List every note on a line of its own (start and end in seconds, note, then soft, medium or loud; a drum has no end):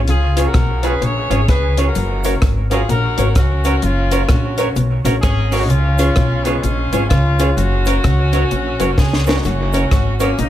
0.08 0.48 C#2 loud
0.08 0.26 C#3 medium
0.08 0.44 F4 medium
0.08 0.44 G#4 loud
0.08 closed hi-hat medium
0.36 0.45 C#4 medium
0.36 0.46 C#4 medium
0.36 0.45 F4 medium
0.36 0.46 F4 medium
0.36 0.45 G#4 medium
0.36 0.46 G#4 medium
0.36 0.46 C#5 loud
0.36 0.47 C#5 medium
0.36 closed hi-hat loud
0.47 0.84 F#4 medium
0.47 0.84 A#4 loud
0.54 0.94 B1 medium
0.54 0.72 B2 medium
0.54 kick loud
0.54 cross-stick loud
0.54 closed hi-hat medium
0.83 0.92 C#4 medium
0.83 0.93 C#4 medium
0.83 0.92 F4 medium
0.83 0.93 F4 medium
0.83 0.92 G#4 medium
0.83 0.93 G#4 medium
0.83 1.03 G#4 medium
0.83 1.03 B4 medium
0.83 0.92 C#5 loud
0.83 0.93 C#5 medium
0.83 closed hi-hat medium
1.01 1.26 A#1 medium
1.01 1.19 A#2 medium
1.01 1.07 G#4 soft
1.01 1.48 G#4 medium
1.01 1.07 C#5 soft
1.01 1.49 C#5 loud
1.01 closed hi-hat medium
1.30 1.46 G#1 medium
1.30 1.42 G#2 medium
1.30 1.39 C#4 medium
1.30 1.40 C#4 medium
1.30 1.39 F4 medium
1.30 1.40 F4 medium
1.30 1.39 G#4 medium
1.30 1.40 G#4 medium
1.30 1.39 C#5 medium
1.30 1.40 C#5 medium
1.30 closed hi-hat medium
1.48 1.88 C#2 medium
1.48 1.66 C#3 medium
1.48 1.54 G#4 soft
1.48 1.84 G#4 medium
1.48 1.84 B4 loud
1.48 1.54 C#5 soft
1.48 muted clean electric guitar stroke soft
1.48 kick medium
1.48 cross-stick loud
1.48 closed hi-hat medium
1.77 1.86 C#4 medium
1.77 1.87 C#4 medium
1.77 1.86 F4 medium
1.77 1.87 F4 medium
1.77 1.86 G#4 medium
1.77 1.87 G#4 medium
1.77 1.86 C#5 medium
1.77 1.87 C#5 medium
1.77 closed hi-hat medium
1.88 2.43 F#4 medium
1.88 2.43 A#4 medium
1.95 2.35 F#1 loud
1.95 2.13 F#2 medium
1.95 closed hi-hat medium
1.95 cabasa soft
2.24 2.33 C#4 medium
2.24 2.34 C#4 medium
2.24 2.33 F#4 medium
2.24 2.34 F#4 medium
2.24 2.33 A#4 medium
2.24 2.34 A#4 medium
2.24 2.33 C#5 medium
2.24 2.35 C#5 medium
2.24 closed hi-hat loud
2.24 cabasa medium
2.42 2.82 G#1 medium
2.42 2.60 G#2 medium
2.42 kick loud
2.42 cross-stick loud
2.42 closed hi-hat medium
2.42 cabasa soft
2.70 2.79 C#4 medium
2.70 2.81 C#4 medium
2.70 2.88 F4 medium
2.70 2.79 F#4 medium
2.70 2.81 F#4 medium
2.70 2.88 G#4 loud
2.70 2.80 A#4 medium
2.70 2.81 A#4 medium
2.70 2.80 C#5 medium
2.70 2.81 C#5 medium
2.70 closed hi-hat medium
2.70 cabasa medium
2.89 3.14 A#1 loud
2.89 3.06 A#2 medium
2.89 3.33 F#4 medium
2.89 2.95 A#4 soft
2.89 3.33 A#4 loud
2.89 2.95 C#5 soft
2.89 closed hi-hat medium
2.89 cabasa medium
3.17 3.33 G#1 medium
3.17 3.28 G#2 medium
3.17 3.26 C#4 medium
3.17 3.27 C#4 medium
3.17 3.26 F#4 medium
3.17 3.27 F#4 medium
3.17 3.27 A#4 medium
3.17 3.28 A#4 medium
3.17 3.27 C#5 medium
3.17 3.28 C#5 medium
3.17 closed hi-hat medium
3.17 cabasa medium
3.35 3.76 C#2 medium
3.35 3.53 C#3 medium
3.35 3.83 C#4 medium
3.35 3.84 F#4 loud
3.35 kick loud
3.35 cross-stick loud
3.35 closed hi-hat medium
3.35 cabasa medium
3.64 3.73 C#4 medium
3.64 3.75 C#4 medium
3.64 3.73 F#4 medium
3.64 3.75 F#4 medium
3.64 3.74 A#4 medium
3.64 3.75 A#4 loud
3.64 3.74 C#5 loud
3.64 3.75 C#5 medium
3.64 closed hi-hat medium
3.64 cabasa medium
3.82 4.23 F#1 medium
3.82 4.00 F#2 medium
3.82 4.29 C#4 medium
3.82 4.30 F4 medium
3.82 closed hi-hat medium
3.82 cabasa soft
4.11 4.20 C#4 medium
4.11 4.21 C#4 medium
4.11 4.20 F#4 medium
4.11 4.21 F#4 medium
4.11 4.20 A#4 medium
4.11 4.22 A#4 medium
4.11 4.20 C#5 loud
4.11 4.22 C#5 medium
4.11 closed hi-hat loud
4.11 cabasa medium
4.29 4.69 A#1 medium
4.29 4.47 A#2 medium
4.29 4.77 C#4 medium
4.29 4.77 F#4 medium
4.29 kick loud
4.29 cross-stick loud
4.29 closed hi-hat medium
4.29 cabasa soft
4.57 4.67 C#4 medium
4.57 4.68 C#4 medium
4.57 4.67 F#4 medium
4.57 4.68 F#4 medium
4.57 4.67 A#4 medium
4.57 4.68 A#4 medium
4.57 4.67 C#5 loud
4.57 4.68 C#5 medium
4.57 closed hi-hat medium
4.57 cabasa medium
4.76 5.01 B1 loud
4.76 4.94 B2 medium
4.76 4.82 A#4 soft
4.76 4.82 C#5 soft
4.76 closed hi-hat medium
4.76 cabasa medium
5.05 5.20 A#1 medium
5.05 5.16 A#2 medium
5.05 5.14 C#4 medium
5.05 5.15 C#4 medium
5.05 5.14 F#4 medium
5.05 5.15 F#4 medium
5.05 5.14 A#4 medium
5.05 5.15 A#4 medium
5.05 5.14 C#5 medium
5.05 5.15 C#5 medium
5.05 closed hi-hat medium
5.05 cabasa medium
5.22 5.70 G#1 loud
5.22 5.41 G#2 medium
5.22 5.59 C#4 medium
5.22 5.58 G#4 loud
5.22 5.29 A#4 soft
5.22 5.29 C#5 soft
5.22 muted clean electric guitar stroke soft
5.22 kick loud
5.22 cross-stick loud
5.22 closed hi-hat medium
5.22 cabasa medium
5.52 5.61 C#4 medium
5.52 5.61 F#4 medium
5.52 5.62 F#4 medium
5.52 5.62 A#4 medium
5.52 5.61 A#4 medium
5.52 5.62 C#5 loud
5.52 5.61 C#5 loud
5.52 open hi-hat medium
5.52 cabasa medium
5.61 5.70 D#4 medium
5.61 5.70 F#4 medium
5.70 6.10 C#2 loud
5.70 5.88 C#3 medium
5.70 6.46 C#4 medium
5.70 6.46 F4 loud
5.70 closed hi-hat medium
5.70 cabasa soft
5.98 6.07 C#4 medium
5.98 6.09 C#4 medium
5.98 6.08 F4 medium
5.98 6.09 F4 medium
5.98 6.08 G#4 medium
5.98 6.09 G#4 medium
5.98 6.08 C#5 loud
5.98 6.09 C#5 medium
5.98 closed hi-hat loud
5.98 cabasa medium
6.16 6.57 B1 loud
6.16 6.35 B2 medium
6.16 kick loud
6.16 cross-stick loud
6.16 closed hi-hat medium
6.16 cabasa soft
6.44 6.64 G#3 medium
6.44 6.63 B3 medium
6.44 6.54 C#4 medium
6.44 6.55 C#4 medium
6.44 6.54 F4 medium
6.44 6.55 F4 medium
6.44 6.55 G#4 medium
6.44 6.55 C#5 loud
6.44 6.56 C#5 medium
6.44 closed hi-hat medium
6.44 cabasa medium
6.63 6.89 A#1 medium
6.63 6.81 A#2 medium
6.63 7.12 G#3 medium
6.63 7.10 C#4 loud
6.63 6.70 G#4 soft
6.63 6.70 C#5 soft
6.63 closed hi-hat medium
6.63 cabasa medium
6.92 7.08 G#1 medium
6.92 7.04 G#2 medium
6.92 7.01 C#4 medium
6.92 7.02 C#4 medium
6.92 7.01 F4 medium
6.92 7.02 F4 medium
6.92 7.01 G#4 medium
6.92 7.03 G#4 medium
6.92 7.02 C#5 medium
6.92 7.03 C#5 medium
6.92 closed hi-hat medium
6.92 cabasa medium
7.09 7.51 C#2 loud
7.09 7.28 C#3 medium
7.09 7.55 C#4 medium
7.09 7.53 F4 loud
7.09 7.17 G#4 soft
7.09 7.17 C#5 soft
7.09 kick loud
7.09 cross-stick loud
7.09 closed hi-hat medium
7.09 cabasa medium
7.39 7.48 C#4 medium
7.39 7.49 C#4 medium
7.39 7.48 F4 medium
7.39 7.49 F4 medium
7.39 7.48 G#4 medium
7.39 7.49 G#4 medium
7.39 7.49 C#5 medium
7.39 7.50 C#5 loud
7.39 closed hi-hat loud
7.39 cabasa medium
7.56 7.97 F#1 loud
7.56 7.75 F#2 medium
7.56 8.98 C#4 medium
7.56 8.97 F#4 loud
7.56 closed hi-hat medium
7.56 cabasa soft
7.85 7.95 C#4 medium
7.85 7.96 C#4 medium
7.85 7.95 F#4 medium
7.85 7.96 F#4 medium
7.85 7.95 A#4 medium
7.85 7.96 A#4 medium
7.85 7.96 C#5 medium
7.85 7.97 C#5 medium
7.85 closed hi-hat loud
7.85 cabasa medium
8.04 8.44 C#2 loud
8.04 8.22 C#3 medium
8.04 kick loud
8.04 cross-stick loud
8.04 closed hi-hat medium
8.04 cabasa soft
8.33 8.42 C#4 medium
8.33 8.42 F#4 medium
8.33 8.43 F#4 medium
8.33 8.42 A#4 medium
8.33 8.43 A#4 medium
8.33 8.42 C#5 medium
8.33 8.43 C#5 loud
8.33 closed hi-hat medium
8.33 cabasa medium
8.51 8.76 A#1 medium
8.51 8.69 A#2 medium
8.51 8.57 A#4 soft
8.51 8.57 C#5 soft
8.51 closed hi-hat medium
8.51 cabasa medium
8.79 8.95 F#1 medium
8.79 8.91 F#2 medium
8.79 8.88 C#4 medium
8.79 8.89 C#4 medium
8.79 8.89 F#4 medium
8.79 8.90 F#4 medium
8.79 8.89 A#4 medium
8.79 8.90 A#4 medium
8.79 8.89 C#5 loud
8.79 8.90 C#5 loud
8.79 closed hi-hat medium
8.79 cabasa medium
8.98 9.38 C#2 medium
8.98 9.16 C#3 medium
8.98 9.34 C#4 medium
8.98 9.34 G#4 medium
8.98 9.04 A#4 soft
8.98 9.04 C#5 soft
8.98 muted clean electric guitar stroke soft
8.98 kick loud
8.98 snare medium
8.98 cabasa medium
9.13 snare medium
9.26 9.35 C#4 medium
9.26 9.36 C#4 medium
9.26 9.36 F#4 medium
9.26 9.37 F#4 medium
9.26 9.36 A#4 medium
9.26 9.37 A#4 medium
9.26 9.36 C#5 medium
9.26 9.37 C#5 medium
9.26 snare loud
9.26 cabasa medium
9.37 9.46 D#4 medium
9.37 9.44 F#4 medium
9.44 9.85 F#1 loud
9.44 9.62 F#2 medium
9.44 10.17 C#4 medium
9.44 10.17 F#4 medium
9.44 closed hi-hat medium
9.44 cabasa soft
9.73 9.82 C#4 medium
9.73 9.83 C#4 medium
9.73 9.82 F#4 medium
9.73 9.84 F#4 medium
9.73 9.82 A#4 medium
9.73 9.84 A#4 medium
9.73 9.83 C#5 medium
9.73 9.84 C#5 medium
9.73 closed hi-hat loud
9.73 cabasa medium
9.91 10.32 G#1 medium
9.91 10.10 G#2 medium
9.91 kick medium
9.91 cross-stick loud
9.91 closed hi-hat medium
9.91 cabasa medium
10.20 10.39 A#3 medium
10.20 10.29 C#4 medium
10.20 10.30 C#4 medium
10.20 10.39 C#4 medium
10.20 10.29 F#4 medium
10.20 10.30 F#4 medium
10.20 10.29 A#4 medium
10.20 10.30 A#4 medium
10.20 10.29 C#5 medium
10.20 10.30 C#5 medium
10.20 closed hi-hat medium
10.20 cabasa medium
10.38 10.49 A#1 loud
10.38 10.49 A#2 medium
10.38 10.49 A#3 medium
10.38 10.49 D#4 medium
10.38 10.44 A#4 soft
10.38 10.44 C#5 soft
10.38 closed hi-hat medium
10.38 cabasa medium